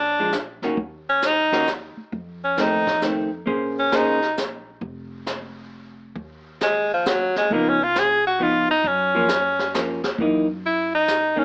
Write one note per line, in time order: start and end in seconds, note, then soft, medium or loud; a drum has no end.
0.00 0.59 A#1 medium
0.00 0.34 D4 medium
0.19 0.33 F3 medium
0.19 0.33 G#3 medium
0.19 0.33 D4 medium
0.32 snare soft
0.32 hi-hat pedal medium
0.62 0.76 D2 medium
0.62 0.77 D#3 soft
0.62 0.77 A#3 medium
0.62 0.77 C#4 medium
0.62 0.78 F#4 medium
0.62 snare soft
0.77 1.93 D#2 medium
0.77 brush sweep soft
0.77 kick soft
1.09 1.27 C#4 medium
1.22 1.69 D#4 medium
1.22 snare medium
1.22 hi-hat pedal medium
1.52 1.66 D#3 medium
1.52 1.66 A#3 medium
1.52 1.66 C#4 medium
1.52 1.67 F#4 medium
1.52 snare soft
1.67 snare soft
1.67 hi-hat pedal soft
1.97 muted upright bass stroke soft
2.12 3.43 F2 medium
2.12 brush sweep soft
2.12 kick soft
2.44 2.62 C#4 medium
2.57 2.84 D#3 soft
2.57 2.84 A3 medium
2.57 2.85 C4 medium
2.57 3.04 D#4 medium
2.57 snare medium
2.57 hi-hat pedal soft
2.87 kick soft
2.87 snare soft
3.01 3.29 D#3 soft
3.01 3.29 A3 soft
3.01 3.30 C4 medium
3.01 snare soft
3.01 hi-hat pedal soft
3.46 4.77 A#1 medium
3.46 3.90 A#3 soft
3.46 3.90 C#4 medium
3.46 3.90 G#4 medium
3.46 3.90 C5 medium
3.46 brush sweep soft
3.46 kick soft
3.79 3.97 C#4 medium
3.92 4.19 A#3 medium
3.92 4.19 C#4 medium
3.92 4.39 D#4 medium
3.92 4.19 G#4 medium
3.92 4.20 C5 medium
3.92 snare medium
3.92 hi-hat pedal soft
4.22 snare soft
4.37 snare medium
4.37 hi-hat pedal medium
4.81 6.12 F1 medium
4.81 brush sweep soft
4.81 kick soft
5.26 snare medium
5.26 hi-hat pedal medium
6.16 7.46 D#2 medium
6.16 brush sweep soft
6.16 kick soft
6.61 6.89 G#3 medium
6.61 snare medium
6.61 hi-hat pedal medium
6.94 7.09 F3 medium
7.06 7.36 F#3 medium
7.06 snare medium
7.06 hi-hat pedal medium
7.36 7.54 G#3 medium
7.36 snare soft
7.50 8.81 C#2 medium
7.50 7.78 F3 medium
7.50 7.71 A#3 medium
7.50 7.78 B3 medium
7.50 7.79 D#4 medium
7.50 brush sweep soft
7.50 kick soft
7.69 7.85 C#4 medium
7.83 8.01 F4 medium
7.95 8.27 G#4 medium
7.95 snare medium
7.95 hi-hat pedal medium
8.27 8.44 F#4 medium
8.39 8.66 F3 medium
8.39 8.66 B3 medium
8.39 8.67 D#4 medium
8.39 8.70 F4 medium
8.71 8.89 D#4 medium
8.84 10.14 F#2 medium
8.84 9.75 C#4 medium
8.84 brush sweep soft
8.84 kick soft
9.15 9.28 F3 medium
9.15 9.29 A#3 medium
9.15 9.29 C#4 medium
9.28 snare medium
9.28 hi-hat pedal medium
9.59 snare soft
9.74 10.01 F3 soft
9.74 10.01 A#3 soft
9.74 10.01 C#4 medium
9.74 snare medium
9.74 hi-hat pedal medium
10.04 snare medium
10.18 11.45 F#2 medium
10.18 10.46 E3 medium
10.18 10.46 A#3 medium
10.18 10.47 D#4 medium
10.18 brush sweep soft
10.18 kick soft
10.66 10.92 E4 medium
10.95 11.40 D#4 medium
11.08 snare medium
11.08 hi-hat pedal medium
11.36 11.45 D#3 medium
11.36 11.45 A#3 medium
11.36 11.45 C#4 medium